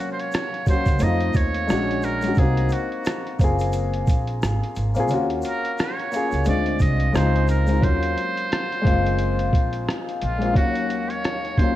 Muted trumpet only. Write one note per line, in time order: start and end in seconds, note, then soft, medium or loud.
0.00 0.11 F#4 medium
0.12 0.22 C5 medium
0.20 0.68 C#5 loud
0.69 1.04 C5 loud
1.03 1.38 D#5 loud
1.36 2.06 C#5 loud
2.05 2.40 A#4 loud
2.39 2.74 G#4 medium
2.73 3.40 F#4 medium
5.46 5.82 A#4 loud
5.80 6.47 C#5 medium
6.48 6.83 D5 loud
6.82 7.17 D#5 medium
7.16 7.49 C5 loud
7.50 7.85 A#4 medium
7.84 9.96 C5 loud
10.23 10.54 F4 medium
10.56 11.12 F#4 loud
11.10 11.60 C#5 loud
11.59 11.76 C5 medium